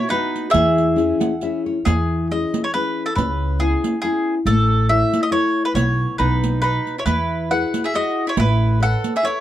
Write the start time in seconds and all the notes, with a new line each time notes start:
0.09 B3 D#4 F#4 B4, riq
0.36 riq
0.50 E2 E3 G#4 E5
0.54 riq
0.78 riq
0.96 C#4 E4 G#4, riq
1.20 F#5, riq
1.41 C#4 E4 G#4 E5, riq
1.66 C#5
1.85 E2 E3 G#4, riq
2.31 C#4 E4 G#4 D#5
2.54 riq
2.64 C#5
2.74 C#4 E4 G#4 B4, riq
3.06 A4
3.15 C#2 C#3 B4, riq
3.59 B3 C#4 E4 G#4
3.84 riq
4.02 B3 C#4 E4 G#4, riq
4.45 A1 A3 A4, riq
4.89 E4 A4 C#5 E5
5.13 riq
5.23 D#5
5.31 E4 A4 C#5, riq
5.65 B4
5.74 B1 B3 C#5, riq
6.18 B1 B3 D#4 B4, riq
6.44 riq
6.61 D#4 F#4 B4 D#5, riq
6.87 riq
6.98 E4 C#5
7.06 E2 E3 E4 B4, riq
7.51 E4 F#4 G#4 B4 F#5
7.74 riq
7.84 G#4 E5
7.94 E4 F#4 G#4 D#5, riq
8.27 E4 C#5
8.37 A1 A3 E4 B4, riq
8.80 A4 B4 C#5 F#5
9.04 riq
9.16 G#4 E5
9.23 E4 A4 B4 C#5, riq